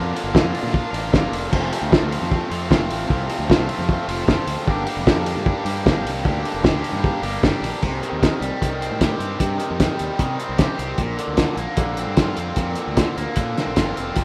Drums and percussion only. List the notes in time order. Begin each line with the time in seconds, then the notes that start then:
0.17 open hi-hat
0.35 kick, snare
0.55 open hi-hat
0.66 snare
0.74 kick
0.94 open hi-hat
1.14 kick, snare
1.33 open hi-hat
1.53 kick, crash
1.73 open hi-hat
1.92 kick, snare
2.12 open hi-hat
2.23 snare
2.32 kick
2.52 open hi-hat
2.71 kick, snare
2.91 open hi-hat
3.10 kick
3.30 open hi-hat
3.50 kick, snare
3.69 open hi-hat
3.81 snare
3.89 kick
4.09 open hi-hat
4.28 kick, snare
4.47 open hi-hat
4.68 kick
4.87 open hi-hat
5.07 kick, snare
5.26 open hi-hat
5.37 snare
5.46 kick
5.66 open hi-hat
5.86 kick, snare
6.07 open hi-hat
6.25 kick
6.45 open hi-hat
6.64 kick, snare
6.84 open hi-hat
6.95 snare
7.04 kick
7.23 open hi-hat
7.43 kick, snare
7.64 snare, open hi-hat
7.82 kick, crash
8.03 closed hi-hat
8.23 kick, snare, closed hi-hat
8.42 closed hi-hat
8.62 kick, closed hi-hat
8.82 closed hi-hat
9.01 kick, snare, closed hi-hat
9.20 closed hi-hat
9.40 kick, closed hi-hat
9.60 closed hi-hat
9.80 kick, snare, closed hi-hat
9.99 closed hi-hat
10.19 kick, closed hi-hat
10.40 closed hi-hat
10.58 kick, snare, closed hi-hat
10.79 closed hi-hat
10.98 kick, closed hi-hat
11.19 closed hi-hat
11.37 kick, snare, closed hi-hat
11.57 closed hi-hat
11.77 kick, closed hi-hat
11.97 closed hi-hat
12.17 kick, snare, closed hi-hat
12.37 closed hi-hat
12.56 kick, closed hi-hat
12.75 closed hi-hat
12.97 kick, snare, closed hi-hat
13.18 closed hi-hat
13.36 kick, closed hi-hat
13.57 snare, closed hi-hat
13.76 kick, snare, closed hi-hat
13.97 closed hi-hat
14.16 kick, closed hi-hat